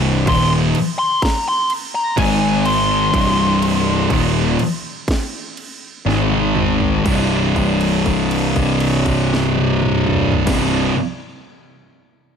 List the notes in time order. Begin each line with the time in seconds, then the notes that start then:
Already playing: C1 C2 G2 C3
0.27 D#1 D#2 A#2 D#3 C6, kick, crash
0.75 crash
0.99 C6
1.22 A#5, kick, snare, crash
1.48 C6
1.70 crash
1.95 A#5
2.17 G#1 G#2 D#3 G#3 G#5, kick, crash
2.66 C6, crash
3.13 C1 C2 G2 C3, kick, crash
3.62 crash
4.09 D#1 D#2 A#2 D#3, kick, crash
4.59 crash
5.08 kick, snare, crash
5.57 crash
6.06 G#1 G#2 D#3 G#3, snare
6.31 high tom
6.56 mid tom
6.80 floor tom
7.05 C1 C2 G2, kick, crash
7.09 C3
7.56 kick, crash
7.81 crash
8.06 kick, crash
8.31 crash
8.56 kick, crash
8.80 crash
9.06 kick, crash
9.34 snare
9.56 high tom
9.82 mid tom
10.06 mid tom
10.32 floor tom
10.46 C1 C2 G2 C3, kick, snare, crash